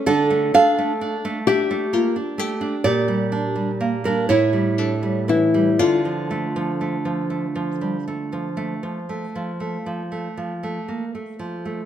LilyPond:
<<
  \new Staff \with { instrumentName = "Nylon-string guitar" } { \time 12/8 \key d \minor \tempo 4. = 40 d'4. g'8 f'8 g'2 e'8 d'8 e'8 | f'1~ f'4~ f'16 r8. | }
  \new Staff \with { instrumentName = "Nylon-string guitar" } { \time 12/8 \key d \minor << { <d' a'>8 <a' f''>4 <g' e''>4. <g' d''>4~ <g' d''>16 <d' bes'>16 <e' cis''>4. | <f' d''>1~ <f' d''>8 r4. | } \\ { d16 a16 d'16 a16 d'16 a16 d'16 a16 bes16 d'16 a16 d'16 bes,16 g16 d'16 g16 bes16 g16 a,16 g16 a16 g16 e16 g16 | d16 f16 a16 f16 a16 f16 a16 f16 g16 a16 f16 a16 f16 a16 f16 a16 f16 a16 f16 a16 bes16 a16 f16 a16 | } >> }
>>